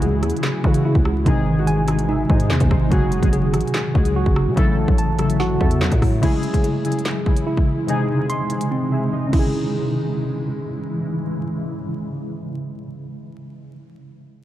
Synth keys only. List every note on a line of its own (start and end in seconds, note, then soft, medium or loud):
0.00 0.63 C#3 loud
0.00 0.64 E3 loud
0.00 0.64 G#3 loud
0.00 0.65 E4 loud
0.00 0.46 F#4 loud
0.00 1.28 G#4 loud
0.63 1.09 C#3 loud
0.63 1.09 E3 medium
0.63 1.10 G#3 medium
0.63 1.10 E4 medium
0.63 1.11 F#4 loud
1.25 1.48 C3 loud
1.25 1.49 D#3 loud
1.25 1.49 G#3 loud
1.25 1.49 D#4 loud
1.25 1.50 G#4 loud
1.56 1.79 C3 medium
1.56 1.80 D#3 medium
1.56 1.80 G#3 medium
1.56 1.81 D#4 medium
1.56 1.81 F#4 medium
1.87 2.18 C3 medium
1.87 2.18 D#3 medium
1.87 2.19 G#3 medium
1.87 2.19 D#4 medium
1.87 2.20 G#4 medium
1.87 2.08 G#5 medium
2.09 2.28 E5 medium
2.28 2.74 C3 medium
2.28 2.75 D#3 medium
2.28 2.75 G#3 medium
2.28 2.76 D#4 medium
2.28 2.76 G#4 medium
2.28 2.49 D#5 medium
2.50 2.70 C5 medium
2.72 2.91 C5 medium
2.90 3.14 C#3 loud
2.90 3.14 F#3 loud
2.90 3.14 G#3 loud
2.90 3.15 F#4 loud
2.90 3.15 G#4 loud
3.21 3.75 C#3 medium
3.21 3.75 F#3 medium
3.21 3.76 G#3 medium
3.21 3.76 F#4 medium
3.21 3.77 G#4 loud
3.94 4.40 C#3 medium
3.94 4.41 F#3 medium
3.94 4.41 G#3 medium
3.94 4.41 F#4 medium
3.94 4.42 G#4 loud
4.55 4.79 C#3 loud
4.55 4.80 F#3 loud
4.55 4.80 A3 loud
4.55 4.80 E4 loud
4.55 4.81 A4 loud
4.86 5.10 C#3 medium
4.86 5.10 F#3 medium
4.86 5.11 A3 medium
4.86 5.11 E4 medium
4.86 5.12 A4 medium
5.17 5.49 C#3 medium
5.17 5.49 F#3 medium
5.17 5.50 A3 medium
5.17 5.50 E4 medium
5.17 5.50 A4 loud
5.17 5.38 E5 medium
5.39 5.59 F#5 medium
5.59 6.05 C#3 medium
5.59 6.06 F#3 medium
5.59 6.06 A3 medium
5.59 6.07 E4 medium
5.59 6.07 A4 loud
5.59 5.80 E5 medium
5.81 6.20 C#5 medium
6.21 6.45 C#3 loud
6.21 6.45 G#3 loud
6.21 6.46 E4 loud
6.21 6.46 G#4 loud
6.52 6.76 C#3 medium
6.52 6.76 G#3 medium
6.52 6.77 E4 medium
6.52 6.77 G#4 loud
6.83 7.14 C#3 medium
6.83 7.15 G#3 medium
6.83 7.15 E4 medium
6.83 7.16 G#4 loud
7.25 7.71 C#3 medium
7.25 7.72 G#3 medium
7.25 7.72 E4 medium
7.25 7.73 G#4 medium
7.87 8.10 C3 loud
7.87 8.11 G#3 loud
7.87 8.11 D#4 loud
7.87 8.12 G#4 loud
8.18 8.41 C3 medium
8.18 8.42 G#3 medium
8.18 8.42 D#4 medium
8.18 8.43 G#4 loud
8.49 8.80 C3 medium
8.49 8.81 G#3 medium
8.49 8.81 D#4 medium
8.49 8.82 G#4 medium
8.90 9.32 C3 medium
8.90 9.30 G#3 medium
8.90 9.34 D#4 medium
8.90 9.34 G#4 medium
8.90 9.11 E5 medium
9.13 9.32 D#5 medium
9.26 12.74 C#3 medium
9.31 12.79 G#3 medium
9.35 12.83 E4 medium
9.40 12.88 G#4 medium